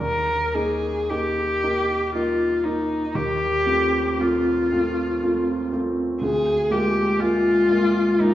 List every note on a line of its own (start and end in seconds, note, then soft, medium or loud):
0.00 0.52 D#2 soft
0.00 0.56 A#4 medium
0.54 1.06 A#3 soft
0.54 1.06 D#4 soft
0.54 1.11 G#4 medium
1.09 1.59 A#3 soft
1.09 1.60 D#4 soft
1.09 2.14 G4 medium
1.63 2.10 A#3 soft
1.63 2.10 D#4 soft
2.14 2.60 A#3 soft
2.14 2.61 D#4 soft
2.14 2.66 F4 medium
2.64 3.11 A#3 soft
2.64 3.17 D#4 medium
2.64 3.11 D#4 soft
3.15 3.65 D#2 soft
3.15 4.22 G4 medium
3.66 4.15 A3 soft
3.66 4.15 C4 soft
3.66 4.15 F4 soft
4.18 4.67 A3 soft
4.18 4.68 C4 soft
4.18 4.68 F4 soft
4.18 5.74 F4 soft
4.71 5.19 A3 soft
4.71 5.19 C4 soft
4.71 5.19 F4 soft
5.23 5.69 A3 soft
5.23 5.69 C4 soft
5.23 5.69 F4 soft
5.72 6.18 A3 soft
5.72 6.19 C4 soft
5.72 6.19 F4 soft
6.21 6.70 D2 soft
6.21 6.73 G#4 medium
6.70 7.17 G#3 soft
6.70 7.17 A#3 soft
6.70 7.17 F4 soft
6.70 7.21 G4 medium
7.19 7.66 G#3 soft
7.19 7.66 A#3 soft
7.19 8.23 F4 medium
7.19 7.66 F4 soft
7.68 8.16 G#3 soft
7.68 8.16 A#3 soft
7.68 8.16 F4 soft
8.20 8.34 G#3 soft
8.20 8.34 A#3 soft
8.20 8.34 D#4 medium
8.20 8.34 F4 soft